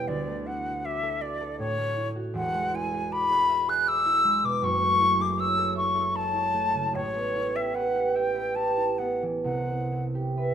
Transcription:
Already playing: harp E1 E2 B2 G3 E4 G4 C#5
0.07 harp D2, flute D5
0.27 harp A3
0.46 harp E4, flute F#5
0.66 harp F#4
0.85 harp D5, flute E5
1.03 harp A4
1.21 flute D5, harp D5
1.41 harp A4
1.59 harp A2, flute C#5
1.78 harp A3
1.97 harp E4
2.16 harp F#4
2.34 harp E1 E2, flute F#5
2.55 harp G#3
2.74 harp E4, flute G#5
2.93 harp F#4
3.12 harp D5, flute B5
3.31 harp G#4
3.49 harp E5
3.68 harp G#4, flute F#6
3.86 harp D5, flute E6
4.06 harp E4
4.24 harp G#3
4.43 harp B2, flute D6
4.62 harp F#1 F#2, flute C#6
4.82 harp A3
5.00 harp E4
5.20 harp G#4, flute D6
5.38 harp C#5, flute E6
5.57 harp A4
5.75 harp E5, flute C#6
5.95 harp A4
6.15 harp C#5, flute A5
6.34 harp E4
6.54 harp A3
6.74 harp C#3
6.93 harp A1 A2, flute C#5
7.14 harp B3
7.35 harp E4
7.55 harp G4, flute E5
7.74 harp B4, flute F#5
7.95 harp G4
8.15 harp E5, flute G5
8.35 harp B4
8.55 harp G4, flute A5
8.77 harp E4
8.98 harp B3, flute F#5
9.22 harp E3
9.43 harp C2 C3, flute F#5
9.68 harp C4
9.92 harp E4
10.15 harp G4
10.36 harp B4, flute E5

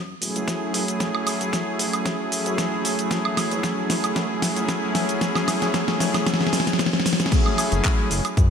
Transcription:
Already playing: analog synth bass F#2
0.20 analog synth bass E1, analog synth pad F#3 A3 C#4 E4 G#4, open hi-hat, cabasa
0.36 analog synth bass C#2, closed hi-hat, cabasa
0.48 kick, snare, closed hi-hat, cabasa
0.74 analog synth bass F#1, open hi-hat, cabasa
0.87 analog synth pad F#3 A3 C#4 E4 G#4, closed hi-hat, cabasa
1.00 kick, snare, closed hi-hat, cabasa
1.15 high woodblock
1.27 open hi-hat, cabasa, high woodblock
1.41 analog synth bass F#1, closed hi-hat, cabasa
1.53 kick, snare, closed hi-hat, cabasa
1.79 analog synth bass F#1, open hi-hat, cabasa
1.93 closed hi-hat, cabasa, high woodblock
2.06 kick, snare, closed hi-hat, cabasa
2.31 analog synth pad F#3 A3 C#4 E4 G#4, open hi-hat, cabasa
2.46 analog synth bass F#2, closed hi-hat, cabasa
2.58 kick, snare, closed hi-hat, cabasa
2.85 analog synth bass E1, open hi-hat, cabasa
2.98 analog synth pad F#3 A3 C#4 E4 G#4, closed hi-hat, cabasa
3.11 kick, snare, closed hi-hat, cabasa
3.25 high woodblock
3.37 snare, open hi-hat, cabasa, high woodblock
3.51 analog synth bass F#1, closed hi-hat, cabasa
3.63 kick, snare, closed hi-hat, cabasa
3.90 analog synth bass F#1, snare, open hi-hat, cabasa
4.04 closed hi-hat, cabasa, high woodblock
4.16 analog synth bass F#2, kick, snare, closed hi-hat, cabasa
4.41 analog synth bass E1, analog synth pad F#3 A3 C#4 E4 G#4, snare, open hi-hat, cabasa
4.56 analog synth bass C#2, closed hi-hat, cabasa
4.69 kick, snare, closed hi-hat, cabasa
4.95 analog synth bass F#1, snare, open hi-hat, cabasa
5.08 analog synth pad F#3 A3 C#4 E4 G#4, closed hi-hat, cabasa
5.21 kick, snare, closed hi-hat, cabasa
5.35 snare, cabasa, high woodblock
5.48 snare, open hi-hat, cabasa, high woodblock
5.62 analog synth bass F#1, snare, closed hi-hat, cabasa
5.74 kick, snare, closed hi-hat, cabasa
5.88 snare
6.00 analog synth bass F#1, snare, open hi-hat, cabasa
6.14 snare, closed hi-hat, cabasa, high woodblock
6.26 kick, snare, closed hi-hat, cabasa
6.34 snare
6.41 snare
6.47 snare
6.53 analog synth bass B1, snare, open hi-hat, cabasa
6.60 snare
6.67 snare, closed hi-hat, cabasa
6.73 snare
6.79 kick, snare, closed hi-hat, cabasa
6.86 snare
6.93 snare
7.00 snare
7.06 snare, open hi-hat, cabasa
7.13 snare
7.19 analog synth pad F#3 A3 C#4 E4 G#4, snare, closed hi-hat, cabasa
7.26 snare
7.31 analog synth pad F#3 A3 C#4 E4 G#4, kick, closed hi-hat, crash, cabasa
7.46 high woodblock
7.58 open hi-hat, cabasa, high woodblock
7.72 analog synth bass F#1, closed hi-hat, cabasa
7.84 kick, clap, closed hi-hat, cabasa
8.11 analog synth bass F#1, open hi-hat, cabasa
8.25 closed hi-hat, cabasa, high woodblock
8.37 analog synth bass F#2, kick, closed hi-hat, cabasa

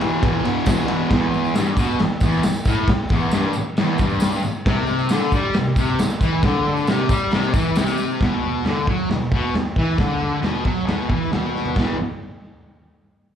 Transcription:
Already playing: distorted electric guitar B3
0.01 distorted electric guitar E2 B2 E3, ride
0.23 distorted electric guitar E2 B2 E3, kick, ride
0.44 distorted electric guitar E2 B2 E3, ride
0.66 distorted electric guitar E2 B2 E3, kick, snare, ride, tambourine
0.88 distorted electric guitar E2 B2 E3, ride
1.10 distorted electric guitar E2, kick, snare, crash
1.34 tambourine
1.45 tambourine
1.54 distorted electric guitar G2, snare, tambourine, crash
1.67 tambourine
1.77 distorted electric guitar B2, kick, tambourine
1.99 distorted electric guitar E2, snare, tambourine, crash
2.20 distorted electric guitar E2, kick, tambourine
2.32 tambourine
2.43 muted distorted electric guitar stroke, snare, tambourine, crash
2.54 tambourine
2.65 distorted electric guitar A2, kick, tambourine
2.88 muted distorted electric guitar stroke, kick, snare, crash
3.09 distorted electric guitar E2, kick, tambourine
3.20 tambourine
3.31 distorted electric guitar G2, snare, tambourine, crash
3.43 tambourine
3.53 muted distorted electric guitar stroke, tambourine
3.77 distorted electric guitar E2, snare, tambourine, crash
3.98 distorted electric guitar G2, kick, tambourine
4.10 tambourine
4.20 snare, tambourine, crash
4.32 tambourine
4.43 muted distorted electric guitar stroke, tambourine
4.66 distorted electric guitar C3, kick, snare, crash
4.87 tambourine
4.99 tambourine
5.09 distorted electric guitar D3, snare, tambourine, crash
5.21 tambourine
5.32 distorted electric guitar G3, kick, tambourine
5.53 distorted electric guitar C3, snare, tambourine, crash
5.76 distorted electric guitar C3, kick, tambourine
5.88 tambourine
5.99 muted distorted electric guitar stroke, snare, tambourine, crash
6.10 tambourine
6.21 distorted electric guitar E3, kick, tambourine
6.43 distorted electric guitar D3, kick, snare, tambourine, crash
6.77 tambourine
6.87 distorted electric guitar C3, snare, tambourine, crash
7.09 distorted electric guitar G3, kick, tambourine
7.20 tambourine
7.31 distorted electric guitar C3, snare, tambourine, crash
7.43 tambourine
7.54 distorted electric guitar E3, kick, tambourine
7.76 distorted electric guitar C3, snare, tambourine, crash
7.86 tambourine
7.98 tambourine
8.09 tambourine
8.21 distorted electric guitar B2, kick, snare, floor tom
8.43 floor tom
8.65 distorted electric guitar D3, snare, floor tom
8.87 distorted electric guitar F#3, kick, floor tom
9.10 distorted electric guitar B2, snare, floor tom
9.32 distorted electric guitar B2, kick, floor tom
9.54 muted distorted electric guitar stroke, snare, floor tom
9.76 distorted electric guitar E3, kick, floor tom
9.98 distorted electric guitar D3, kick, snare, floor tom
10.21 floor tom
10.42 distorted electric guitar B2, snare, floor tom
10.65 distorted electric guitar F#3, kick, floor tom
10.86 distorted electric guitar B2, snare, floor tom
11.10 distorted electric guitar E3, kick, floor tom
11.32 distorted electric guitar B2, snare, floor tom
11.56 snare
11.65 floor tom
11.76 distorted electric guitar E2 B2 E3, kick, snare, crash

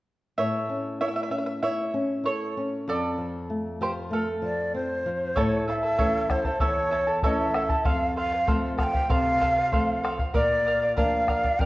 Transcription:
0.38 nylon-string guitar A2, charango C#5 E5
0.69 nylon-string guitar C#4
1.01 nylon-string guitar E4, charango C#5 E5
1.08 charango E5
1.16 charango E5
1.23 charango E5
1.31 nylon-string guitar C#4, charango E5
1.38 charango E5
1.46 charango E5
1.63 nylon-string guitar E4, charango C#5 E5
1.94 nylon-string guitar C#4
2.24 nylon-string guitar E4, charango A4 C#5
2.57 nylon-string guitar C#4
2.88 nylon-string guitar F2, charango A4 D5
3.18 nylon-string guitar F3
3.50 nylon-string guitar A3
3.81 nylon-string guitar F3, charango G4 C5
4.11 nylon-string guitar A3, charango F4 A4
4.42 nylon-string guitar F3, quena D5
4.74 nylon-string guitar C4, quena C5
5.06 nylon-string guitar F3
5.36 nylon-string guitar A2, charango E4 A4 C#5 E5 A5, quena C#5, bombo low
5.68 charango E4 A4 E5 A5, quena F5
5.73 quena E5
5.83 charango E4 A4 A5
5.98 nylon-string guitar E3 A3 C#4, charango E4 A4 C#5 E5 A5, bombo low
6.30 charango E4 A4 E5 A5, quena C5, bombo rim, bombo low
6.44 charango E4 A4 A5, bombo low
6.60 nylon-string guitar E2, charango E4 A4 C#5 E5 A5, quena C#5, bombo low
6.91 charango E4 A4 E5 A5
7.07 charango E4 A4 A5
7.22 nylon-string guitar E3 A3 C#4, charango E4 A4 C#5 E5 A5, quena D#5, bombo low
7.36 quena E5
7.54 charango E4 A4 E5 A5, bombo rim
7.69 charango E4 A4 A5, bombo low
7.85 nylon-string guitar F2, charango A4 C5 F5, quena F5, bombo low
8.16 charango A4 C5 F5, quena F5
8.32 charango C5 F5
8.47 nylon-string guitar F3 A3 C4, charango A4 C5 F5, bombo low
8.78 charango A4 C5 F5, quena A5, bombo rim, bombo low
8.84 quena G5
8.93 charango C5 F5, bombo low
9.09 nylon-string guitar C3, charango A4 C5 F5, quena F5, bombo low
9.40 charango A4 C5 F5, bombo low
9.56 charango C5 F5
9.72 nylon-string guitar F3 A3 C4, charango A4 C5 F5, bombo low
10.03 charango A4 C5 F5, bombo rim
10.19 charango C5 F5, bombo low
10.34 nylon-string guitar A#2, charango A#4 D5 F5, quena D5, bombo low
10.66 charango A#4 D5 F5
10.82 charango D5 F5
10.96 nylon-string guitar F3 A#3 D4, charango A#4 D5 F5, quena F5, bombo low
11.28 charango A#4 D5 F5, bombo rim, bombo low
11.44 charango D5 F5, bombo low
11.59 nylon-string guitar F2, charango A#4 D5 F5, quena G5, bombo low

